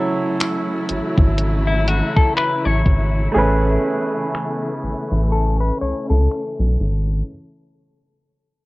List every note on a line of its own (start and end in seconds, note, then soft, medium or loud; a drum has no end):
0.00 7.25 C#3 medium
0.00 3.31 E3 medium
0.00 3.30 F#3 medium
0.00 3.31 F#3 medium
0.00 3.31 A3 medium
0.00 3.31 C#4 medium
0.00 3.32 E4 medium
0.00 7.25 E4 medium
0.00 3.33 A4 medium
0.40 finger snap loud
0.40 closed hi-hat medium
0.89 1.01 G#1 soft
0.89 closed hi-hat medium
1.18 2.02 G#1 medium
1.18 kick loud
1.38 closed hi-hat medium
1.67 1.88 E4 medium
1.88 2.15 F#4 medium
1.88 closed hi-hat medium
2.16 2.36 A4 medium
2.16 kick medium
2.37 2.65 B4 medium
2.37 finger snap loud
2.37 closed hi-hat medium
2.65 2.83 A1 medium
2.65 3.32 C#5 medium
2.86 3.28 G#1 medium
2.86 kick medium
2.86 closed hi-hat medium
3.32 3.77 A1 loud
3.32 7.25 E3 medium
3.32 7.23 A3 medium
3.32 7.25 A3 medium
3.32 5.30 B3 medium
3.32 7.24 G#4 medium
3.36 7.25 C#4 medium
3.36 7.26 B4 medium
4.35 finger snap loud
4.83 4.95 A1 soft
5.12 5.71 A1 medium
5.32 7.27 C#4 medium
5.32 5.59 A4 medium
5.61 5.80 B4 medium
5.81 5.93 C#2 soft
5.81 6.08 C#5 medium
6.10 6.28 C#2 medium
6.10 7.25 A4 medium
6.31 finger snap loud
6.60 6.77 B1 medium
6.80 7.22 G#1 medium